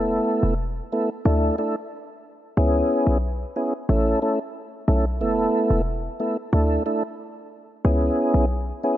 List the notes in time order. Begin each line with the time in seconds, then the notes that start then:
Already playing: E1 A3 B3 E4 A4
0.43 E1
0.92 A3 B3 E4 A4
1.25 D2 A3 D4 E4 A4
1.58 A3 D4 E4 A4
2.57 C#2 B3 C#4 E4 G#4
3.07 B1
3.56 B3 C#4 E4 G#4
3.89 A1 A3 C#4 E4 A4
4.22 A3 C#4 E4 A4
4.88 B1 A3 C#4 E4 A4
5.21 E1 A3 B3 E4 A4
5.70 E1
6.20 A3 B3 E4 A4
6.53 D2 A3 D4 E4 A4
6.86 A3 D4 E4 A4
7.85 C#2 B3 C#4 E4 G#4
8.34 B1
8.83 B3 C#4 E4 G#4